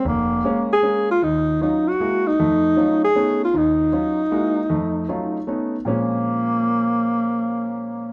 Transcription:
X:1
M:3/4
L:1/8
Q:"Swing" 1/4=155
K:Bbm
V:1 name="Alto saxophone"
B,3 A2 F | E2 E G2 E- | E3 A2 F | E6- |
E4 z2 | B,6- | B,6 |]
V:2 name="Grand piano"
F,,,2 [A,B,D] z [A,B,D] z | E,,2 [G,DEF] z [A,B,_FG] z | [F,,=A,]2 [G,A,DEF] z [A,=B,^C^D] z | [E,,E,]2 [G,DEF] z [A,B,_FG] z |
[F,,=A,]2 [G,A,DEF] z [A,=B,^C^D] z | [B,,F,A,CD]6- | [B,,F,A,CD]6 |]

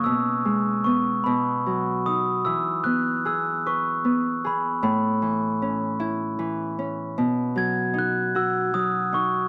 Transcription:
X:1
M:6/8
L:1/8
Q:3/8=50
K:E
V:1 name="Glockenspiel"
e'2 c' b2 d' | e' f' e' c'2 b | b2 z4 | z g' f' e' d' c' |]
V:2 name="Harp"
B,, G, B, B,, F, D | E, B, G B B, G | A,, E, C E E, C | B,, F, D F F, D |]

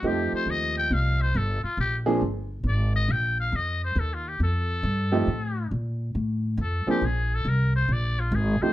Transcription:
X:1
M:4/4
L:1/8
Q:"Swing" 1/4=137
K:Fmix
V:1 name="Muted trumpet"
G c e g f c A F | G z3 d e g f | e c (3A F G A4- | A2 z4 A G |
_A =A B c d F _A c |]
V:2 name="Grand piano"
[F,A,CEG]4- [F,A,CEG] z3 | z [F,B,CD_A] z6 | z6 z [F,A,CEG] | z6 z [F,B,CD_A] |
z6 z [F,A,CEG] |]
V:3 name="Upright bass" clef=bass
F,, z E,,2 C,,2 G,,, z | B,,,2 G,,,2 _A,,,2 B,,,2 | F,,2 E,,2 F,,2 G,,2 | A,,2 B,,2 A,,2 F,, z |
B,,,2 C,,2 B,,,2 _A,,, z |]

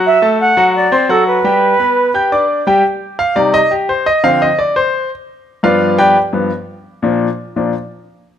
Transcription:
X:1
M:4/4
L:1/8
Q:1/4=172
K:Gphr
V:1 name="Flute"
=e2 ^f2 d2 =A =B- | =B6 z2 | z8 | z8 |
z8 | z8 |]
V:2 name="Grand piano"
[^F,^F^f] [=A,=A=a]2 [F,Ff]2 [Ccc'] [F,Ff]2 | [G,Gg]2 [=B,=B=b]2 [Ggg'] [Ddd']2 [G,Gg] | z2 f d e G c e | f e d c2 z3 |
[F=Bdf]2 [GBdg] z4 z | z8 |]
V:3 name="Grand piano" clef=bass
z8 | z8 | z3 [C,G,E] z4 | [D,F,C] z6 z |
[G,,F,=B,]3 z [G,,F,B,] z3 | [B,,F,D] z2 [B,,F,D] z4 |]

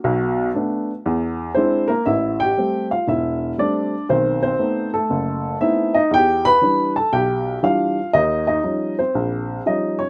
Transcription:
X:1
M:4/4
L:1/8
Q:"Swing" 1/4=119
K:Am
V:1 name="Upright piano"
z6 [^B,^B] [_B,_B] | [Ee] [Gg]2 [Ff] [Ee]2 [Dd]2 | [Cc] [Cc]2 [A,A]3 [Ee] [^D^d] | [Gg] [Bb]2 [Aa] [Gg]2 [Ff]2 |
[^D^d] [Dd]2 [Cc]3 d [^C^c] |]
V:2 name="Upright piano" clef=bass
[B,,,B,,]2 [A,B,D] z E,,2 [^G,DE] z | A,,,2 [G,A,C] z E,,,2 [G,A,C] z | [B,,,^D,]2 [A,B,C^D] z ^F,,,2 [A,B,CD] z | E,,2 [E,G,D] z B,,,2 [E,G,D] z |
^D,,2 [^E,G,^C^D] z ^A,,,2 [E,G,CD] z |]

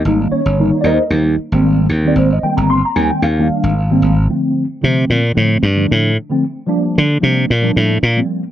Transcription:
X:1
M:4/4
L:1/16
Q:"Swing 16ths" 1/4=113
K:Bb
V:1 name="Tine electric piano"
z2 [_D_d]4 [EBc=de]2 z6 z d | c e g b c' b _a g f6- f z | z16 | z16 |]
V:2 name="Tine electric piano" clef=bass
[E,G,B,E]3 z [E,G,B,E]3 z [E,G,B,E]2 z [E,G,B,C]3 z [E,G,B,C]- | [E,G,B,C] z [E,G,B,C]3 z [E,G,B,C]2 z [E,G,B,D]3 z [E,G,B,C]2 z | [D,F,A,C]3 z [D,F,A,C]3 z [D,F,A,C]2 z [D,F,A,D]3 z [D,F,A,C] | z2 [F,G,B,D]3 z [F,G,B,D]2 z [F,G,B,D]3 z [F,G,B,C]2 z |]
V:3 name="Slap bass" clef=bass
_A,,,2 z G,,,2 z E,, z E,,2 z A,,,3 E,,2 | _A,,,2 z G,,,2 z E,, z E,,2 z A,,,3 A,,,2 | z4 C,2 B,,2 A,,2 G,,2 A,,2 z2 | z4 D,2 C,2 B,,2 A,,2 B,,2 z2 |]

